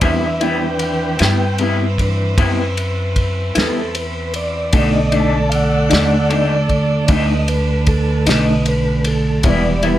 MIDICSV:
0, 0, Header, 1, 6, 480
1, 0, Start_track
1, 0, Tempo, 785340
1, 16, Time_signature, 12, 3, 24, 8
1, 6104, End_track
2, 0, Start_track
2, 0, Title_t, "Tonewheel organ"
2, 0, Program_c, 0, 16
2, 8, Note_on_c, 0, 52, 50
2, 20, Note_on_c, 0, 71, 43
2, 23, Note_on_c, 0, 62, 57
2, 24, Note_on_c, 0, 76, 89
2, 254, Note_off_c, 0, 76, 0
2, 258, Note_on_c, 0, 79, 86
2, 482, Note_on_c, 0, 78, 76
2, 491, Note_off_c, 0, 79, 0
2, 506, Note_on_c, 0, 79, 103
2, 508, Note_off_c, 0, 78, 0
2, 709, Note_off_c, 0, 52, 0
2, 715, Note_off_c, 0, 71, 0
2, 716, Note_off_c, 0, 62, 0
2, 968, Note_off_c, 0, 79, 0
2, 1223, Note_on_c, 0, 52, 47
2, 1226, Note_on_c, 0, 62, 50
2, 1226, Note_on_c, 0, 71, 39
2, 1437, Note_off_c, 0, 52, 0
2, 1439, Note_off_c, 0, 62, 0
2, 1439, Note_off_c, 0, 71, 0
2, 2178, Note_on_c, 0, 69, 113
2, 2411, Note_off_c, 0, 69, 0
2, 2417, Note_on_c, 0, 71, 85
2, 2651, Note_off_c, 0, 71, 0
2, 2664, Note_on_c, 0, 74, 95
2, 2894, Note_off_c, 0, 74, 0
2, 2911, Note_on_c, 0, 50, 57
2, 2920, Note_on_c, 0, 57, 52
2, 2920, Note_on_c, 0, 75, 99
2, 2923, Note_on_c, 0, 74, 60
2, 3142, Note_off_c, 0, 75, 0
2, 3159, Note_on_c, 0, 81, 98
2, 3358, Note_on_c, 0, 77, 75
2, 3382, Note_off_c, 0, 81, 0
2, 3385, Note_off_c, 0, 77, 0
2, 3390, Note_on_c, 0, 78, 112
2, 3849, Note_off_c, 0, 78, 0
2, 4311, Note_off_c, 0, 74, 0
2, 4319, Note_on_c, 0, 74, 65
2, 4345, Note_off_c, 0, 74, 0
2, 4346, Note_on_c, 0, 75, 111
2, 4574, Note_off_c, 0, 75, 0
2, 4577, Note_on_c, 0, 71, 96
2, 4809, Note_off_c, 0, 71, 0
2, 4817, Note_on_c, 0, 69, 103
2, 5049, Note_off_c, 0, 69, 0
2, 5069, Note_on_c, 0, 75, 109
2, 5295, Note_off_c, 0, 75, 0
2, 5307, Note_on_c, 0, 71, 97
2, 5534, Note_off_c, 0, 71, 0
2, 5545, Note_on_c, 0, 69, 102
2, 5756, Note_off_c, 0, 50, 0
2, 5761, Note_off_c, 0, 57, 0
2, 5769, Note_on_c, 0, 73, 80
2, 5772, Note_off_c, 0, 69, 0
2, 5792, Note_on_c, 0, 52, 59
2, 5793, Note_off_c, 0, 73, 0
2, 5793, Note_on_c, 0, 55, 57
2, 5797, Note_on_c, 0, 59, 61
2, 5799, Note_on_c, 0, 74, 100
2, 6019, Note_off_c, 0, 74, 0
2, 6032, Note_on_c, 0, 71, 104
2, 6102, Note_off_c, 0, 52, 0
2, 6103, Note_off_c, 0, 55, 0
2, 6104, Note_off_c, 0, 59, 0
2, 6104, Note_off_c, 0, 71, 0
2, 6104, End_track
3, 0, Start_track
3, 0, Title_t, "Saxophone section"
3, 0, Program_c, 1, 65
3, 0, Note_on_c, 1, 64, 63
3, 9, Note_on_c, 1, 71, 81
3, 12, Note_on_c, 1, 60, 71
3, 2871, Note_off_c, 1, 71, 0
3, 2872, Note_off_c, 1, 60, 0
3, 2876, Note_off_c, 1, 64, 0
3, 2887, Note_on_c, 1, 62, 74
3, 2891, Note_on_c, 1, 69, 77
3, 4319, Note_off_c, 1, 69, 0
3, 4323, Note_on_c, 1, 71, 83
3, 5648, Note_off_c, 1, 62, 0
3, 5648, Note_off_c, 1, 71, 0
3, 5752, Note_on_c, 1, 64, 73
3, 5756, Note_on_c, 1, 67, 86
3, 5763, Note_on_c, 1, 59, 80
3, 6104, Note_off_c, 1, 59, 0
3, 6104, Note_off_c, 1, 64, 0
3, 6104, Note_off_c, 1, 67, 0
3, 6104, End_track
4, 0, Start_track
4, 0, Title_t, "Clean electric guitar"
4, 0, Program_c, 2, 27
4, 10, Note_on_c, 2, 48, 62
4, 13, Note_on_c, 2, 55, 80
4, 18, Note_on_c, 2, 59, 82
4, 22, Note_on_c, 2, 64, 74
4, 157, Note_off_c, 2, 48, 0
4, 159, Note_off_c, 2, 55, 0
4, 161, Note_off_c, 2, 59, 0
4, 163, Note_off_c, 2, 64, 0
4, 249, Note_on_c, 2, 64, 56
4, 258, Note_on_c, 2, 59, 48
4, 265, Note_on_c, 2, 55, 38
4, 397, Note_off_c, 2, 64, 0
4, 402, Note_off_c, 2, 59, 0
4, 405, Note_off_c, 2, 55, 0
4, 733, Note_on_c, 2, 64, 42
4, 740, Note_on_c, 2, 59, 48
4, 749, Note_on_c, 2, 55, 40
4, 880, Note_off_c, 2, 64, 0
4, 883, Note_off_c, 2, 59, 0
4, 887, Note_off_c, 2, 55, 0
4, 974, Note_on_c, 2, 48, 55
4, 982, Note_on_c, 2, 55, 53
4, 987, Note_on_c, 2, 59, 59
4, 993, Note_on_c, 2, 64, 67
4, 1120, Note_off_c, 2, 48, 0
4, 1124, Note_off_c, 2, 55, 0
4, 1127, Note_off_c, 2, 59, 0
4, 1129, Note_off_c, 2, 64, 0
4, 1453, Note_on_c, 2, 48, 78
4, 1457, Note_on_c, 2, 55, 86
4, 1460, Note_on_c, 2, 59, 101
4, 1463, Note_on_c, 2, 64, 94
4, 1600, Note_off_c, 2, 48, 0
4, 1602, Note_off_c, 2, 55, 0
4, 1603, Note_off_c, 2, 59, 0
4, 1605, Note_off_c, 2, 64, 0
4, 2170, Note_on_c, 2, 64, 53
4, 2184, Note_on_c, 2, 59, 52
4, 2191, Note_on_c, 2, 55, 50
4, 2319, Note_off_c, 2, 64, 0
4, 2325, Note_off_c, 2, 59, 0
4, 2329, Note_off_c, 2, 55, 0
4, 2891, Note_on_c, 2, 47, 83
4, 2895, Note_on_c, 2, 57, 78
4, 2898, Note_on_c, 2, 62, 83
4, 2904, Note_on_c, 2, 63, 93
4, 3039, Note_off_c, 2, 47, 0
4, 3041, Note_off_c, 2, 57, 0
4, 3042, Note_off_c, 2, 62, 0
4, 3045, Note_off_c, 2, 63, 0
4, 3130, Note_on_c, 2, 63, 53
4, 3135, Note_on_c, 2, 62, 47
4, 3148, Note_on_c, 2, 57, 47
4, 3278, Note_off_c, 2, 63, 0
4, 3281, Note_off_c, 2, 62, 0
4, 3287, Note_off_c, 2, 57, 0
4, 3604, Note_on_c, 2, 63, 45
4, 3616, Note_on_c, 2, 62, 45
4, 3622, Note_on_c, 2, 57, 42
4, 3755, Note_off_c, 2, 63, 0
4, 3761, Note_off_c, 2, 62, 0
4, 3764, Note_off_c, 2, 57, 0
4, 3848, Note_on_c, 2, 47, 59
4, 3854, Note_on_c, 2, 57, 67
4, 3861, Note_on_c, 2, 62, 69
4, 3867, Note_on_c, 2, 63, 71
4, 3997, Note_off_c, 2, 47, 0
4, 4000, Note_off_c, 2, 57, 0
4, 4003, Note_off_c, 2, 62, 0
4, 4006, Note_off_c, 2, 63, 0
4, 4330, Note_on_c, 2, 47, 79
4, 4335, Note_on_c, 2, 57, 79
4, 4338, Note_on_c, 2, 62, 84
4, 4342, Note_on_c, 2, 63, 86
4, 4478, Note_off_c, 2, 47, 0
4, 4480, Note_off_c, 2, 57, 0
4, 4482, Note_off_c, 2, 62, 0
4, 4483, Note_off_c, 2, 63, 0
4, 5053, Note_on_c, 2, 63, 65
4, 5064, Note_on_c, 2, 62, 51
4, 5070, Note_on_c, 2, 57, 46
4, 5198, Note_off_c, 2, 63, 0
4, 5204, Note_off_c, 2, 62, 0
4, 5207, Note_off_c, 2, 57, 0
4, 5770, Note_on_c, 2, 52, 77
4, 5777, Note_on_c, 2, 55, 73
4, 5781, Note_on_c, 2, 64, 88
4, 5782, Note_on_c, 2, 59, 87
4, 5916, Note_off_c, 2, 52, 0
4, 5919, Note_off_c, 2, 55, 0
4, 5921, Note_off_c, 2, 64, 0
4, 5922, Note_off_c, 2, 59, 0
4, 6009, Note_on_c, 2, 64, 62
4, 6017, Note_on_c, 2, 59, 44
4, 6027, Note_on_c, 2, 55, 47
4, 6104, Note_off_c, 2, 55, 0
4, 6104, Note_off_c, 2, 59, 0
4, 6104, Note_off_c, 2, 64, 0
4, 6104, End_track
5, 0, Start_track
5, 0, Title_t, "Upright bass"
5, 0, Program_c, 3, 32
5, 12, Note_on_c, 3, 40, 73
5, 713, Note_off_c, 3, 40, 0
5, 737, Note_on_c, 3, 43, 81
5, 1437, Note_off_c, 3, 43, 0
5, 1452, Note_on_c, 3, 42, 91
5, 2154, Note_off_c, 3, 42, 0
5, 2179, Note_on_c, 3, 40, 78
5, 2877, Note_off_c, 3, 40, 0
5, 2892, Note_on_c, 3, 35, 86
5, 3593, Note_off_c, 3, 35, 0
5, 3620, Note_on_c, 3, 39, 80
5, 4316, Note_off_c, 3, 39, 0
5, 4332, Note_on_c, 3, 38, 89
5, 5032, Note_off_c, 3, 38, 0
5, 5054, Note_on_c, 3, 35, 85
5, 5752, Note_off_c, 3, 35, 0
5, 5772, Note_on_c, 3, 28, 92
5, 6104, Note_off_c, 3, 28, 0
5, 6104, End_track
6, 0, Start_track
6, 0, Title_t, "Drums"
6, 8, Note_on_c, 9, 51, 81
6, 10, Note_on_c, 9, 36, 112
6, 69, Note_off_c, 9, 51, 0
6, 71, Note_off_c, 9, 36, 0
6, 250, Note_on_c, 9, 51, 56
6, 311, Note_off_c, 9, 51, 0
6, 485, Note_on_c, 9, 51, 66
6, 546, Note_off_c, 9, 51, 0
6, 728, Note_on_c, 9, 51, 82
6, 744, Note_on_c, 9, 38, 108
6, 789, Note_off_c, 9, 51, 0
6, 805, Note_off_c, 9, 38, 0
6, 968, Note_on_c, 9, 51, 57
6, 1029, Note_off_c, 9, 51, 0
6, 1212, Note_on_c, 9, 36, 60
6, 1218, Note_on_c, 9, 51, 55
6, 1273, Note_off_c, 9, 36, 0
6, 1279, Note_off_c, 9, 51, 0
6, 1453, Note_on_c, 9, 36, 121
6, 1453, Note_on_c, 9, 51, 94
6, 1514, Note_off_c, 9, 36, 0
6, 1514, Note_off_c, 9, 51, 0
6, 1695, Note_on_c, 9, 51, 60
6, 1757, Note_off_c, 9, 51, 0
6, 1931, Note_on_c, 9, 51, 61
6, 1932, Note_on_c, 9, 36, 82
6, 1992, Note_off_c, 9, 51, 0
6, 1993, Note_off_c, 9, 36, 0
6, 2172, Note_on_c, 9, 51, 89
6, 2188, Note_on_c, 9, 38, 117
6, 2233, Note_off_c, 9, 51, 0
6, 2249, Note_off_c, 9, 38, 0
6, 2413, Note_on_c, 9, 51, 65
6, 2474, Note_off_c, 9, 51, 0
6, 2651, Note_on_c, 9, 51, 65
6, 2712, Note_off_c, 9, 51, 0
6, 2889, Note_on_c, 9, 51, 89
6, 2892, Note_on_c, 9, 36, 116
6, 2950, Note_off_c, 9, 51, 0
6, 2953, Note_off_c, 9, 36, 0
6, 3130, Note_on_c, 9, 51, 52
6, 3191, Note_off_c, 9, 51, 0
6, 3372, Note_on_c, 9, 51, 61
6, 3433, Note_off_c, 9, 51, 0
6, 3610, Note_on_c, 9, 51, 81
6, 3626, Note_on_c, 9, 38, 121
6, 3671, Note_off_c, 9, 51, 0
6, 3687, Note_off_c, 9, 38, 0
6, 3853, Note_on_c, 9, 51, 56
6, 3915, Note_off_c, 9, 51, 0
6, 4091, Note_on_c, 9, 36, 65
6, 4091, Note_on_c, 9, 51, 45
6, 4152, Note_off_c, 9, 51, 0
6, 4153, Note_off_c, 9, 36, 0
6, 4328, Note_on_c, 9, 51, 85
6, 4332, Note_on_c, 9, 36, 113
6, 4389, Note_off_c, 9, 51, 0
6, 4393, Note_off_c, 9, 36, 0
6, 4571, Note_on_c, 9, 51, 59
6, 4633, Note_off_c, 9, 51, 0
6, 4807, Note_on_c, 9, 51, 61
6, 4811, Note_on_c, 9, 36, 86
6, 4868, Note_off_c, 9, 51, 0
6, 4872, Note_off_c, 9, 36, 0
6, 5052, Note_on_c, 9, 51, 91
6, 5068, Note_on_c, 9, 38, 116
6, 5113, Note_off_c, 9, 51, 0
6, 5129, Note_off_c, 9, 38, 0
6, 5291, Note_on_c, 9, 51, 64
6, 5352, Note_off_c, 9, 51, 0
6, 5528, Note_on_c, 9, 51, 65
6, 5589, Note_off_c, 9, 51, 0
6, 5766, Note_on_c, 9, 51, 90
6, 5769, Note_on_c, 9, 36, 113
6, 5827, Note_off_c, 9, 51, 0
6, 5830, Note_off_c, 9, 36, 0
6, 6006, Note_on_c, 9, 51, 53
6, 6067, Note_off_c, 9, 51, 0
6, 6104, End_track
0, 0, End_of_file